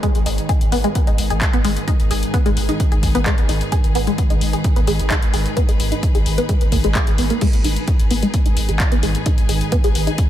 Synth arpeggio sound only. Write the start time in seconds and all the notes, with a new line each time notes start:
0.03 G#3
0.26 D#4
0.49 G#4
0.72 B3
0.84 G#3
1.07 D#4
1.30 G#4
1.53 B3
1.65 G#3
1.88 D#4
2.11 G#4
2.34 B3
2.46 G#3
2.69 D#4
2.92 G#4
3.15 B3
3.26 G#3
3.49 D#4
3.72 G#4
3.95 B3
4.07 G#3
4.30 D#4
4.53 G#4
4.76 B3
4.87 G#3
5.10 D#4
5.34 G#4
5.57 B3
5.69 G#3
5.92 D#4
6.15 G#4
6.38 B3
6.49 G#3
6.72 A#3
6.84 G#3
6.95 G#3
7.18 B3
7.30 A#3
7.41 G#3
7.64 D#4
7.88 G#4
8.11 B3
8.23 G#3
8.46 D#4
8.69 G#4
8.92 B3
9.03 G#3
9.26 D#4
9.49 G#4
9.72 B3
9.84 G#3
10.07 D#4